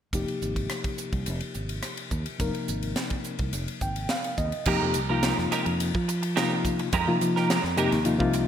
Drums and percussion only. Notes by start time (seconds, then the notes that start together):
0.13 kick, hi-hat pedal, ride
0.28 ride
0.42 hi-hat pedal
0.56 kick, ride
0.70 cross-stick, hi-hat pedal, ride
0.84 kick, ride
0.98 hi-hat pedal
1.13 kick, ride
1.26 hi-hat pedal, ride
1.41 ride
1.54 hi-hat pedal
1.69 ride
1.83 cross-stick, hi-hat pedal, ride
1.97 ride
2.11 kick, hi-hat pedal
2.26 ride
2.40 kick, hi-hat pedal, ride
2.55 ride
2.68 hi-hat pedal
2.83 ride
2.96 snare, hi-hat pedal, ride
3.10 kick, ride
3.24 hi-hat pedal
3.39 kick, ride
3.53 hi-hat pedal, ride
3.68 ride
3.81 kick, hi-hat pedal
3.96 ride
4.09 snare, hi-hat pedal, ride
4.24 ride
4.38 kick, hi-hat pedal
4.52 ride
4.66 kick, crash
4.94 hi-hat pedal, ride
5.23 snare, hi-hat pedal, ride
5.38 snare
5.52 snare, hi-hat pedal, ride
5.66 ride
5.80 hi-hat pedal, ride
5.95 kick
6.09 hi-hat pedal, ride
6.23 ride
6.37 snare, hi-hat pedal, ride
6.65 kick, hi-hat pedal, ride
6.79 ride
6.93 kick, hi-hat pedal, ride
7.21 hi-hat pedal, ride
7.36 snare
7.50 snare, hi-hat pedal, ride
7.65 snare
7.77 hi-hat pedal, ride
7.92 snare, ride
8.05 hi-hat pedal, ride
8.20 kick
8.33 hi-hat pedal, ride